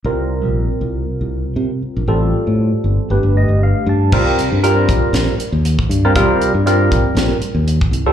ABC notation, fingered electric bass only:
X:1
M:4/4
L:1/16
Q:"Swing 16ths" 1/4=118
K:Gphr
V:1 name="Fingered electric bass" clef=bass
C,,3 B,,,2 z C,,2 z C,,2 z C, z2 B,,, | =A,,,2 z =A,,2 z G,,, z G,,, G,,,2 G,,,2 z G,,2 | [K:Cm] C,,2 z G,,3 B,,, z B,,, z2 E,,2 z G,,2 | C,,2 z G,,3 B,,, z B,,, z2 E,,2 z C,,2 |]